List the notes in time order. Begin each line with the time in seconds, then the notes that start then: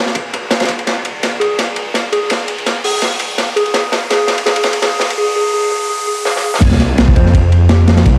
Already playing: riser
0.06 snare
0.15 kick, ride
0.33 ride
0.50 snare, ride
0.60 snare, ride
0.64 kick, snare, ride
0.68 ride
0.79 ride
0.87 snare, ride
1.05 ride
1.23 snare, ride
1.40 G#4, ride
1.58 snare, ride
1.76 ride
1.94 snare, ride
2.12 G#4, ride
2.30 snare, ride
2.48 ride
2.58 ride
2.66 snare, ride
2.84 G#4, open hi-hat
3.02 snare, ride
3.20 ride
3.38 snare, ride
3.56 G#4, ride
3.66 ride
3.74 G#4, snare, ride
3.92 snare, ride
4.10 G#4, snare, ride
4.27 snare, ride
4.38 ride
4.46 G#4, snare, ride
4.56 ride
4.63 snare, ride
4.73 ride
4.82 G#4, snare, ride
5.00 snare, ride
5.10 ride
5.18 G#4
5.36 G#4
5.54 G#4
5.72 G#4
5.89 G#4
6.07 G#4
6.25 G#4, snare
6.36 snare
6.44 G#4
6.54 snare
6.61 C2, kick, crash, ride, sub drop
6.71 snare
6.79 snare, ride
6.98 snare, ride
7.08 kick
7.16 F2 C5, kick, ride
7.26 snare
7.34 kick, ride
7.52 ride
7.69 G4, snare, ride
7.87 snare, ride
7.97 snare, ride
8.06 C2, kick, ride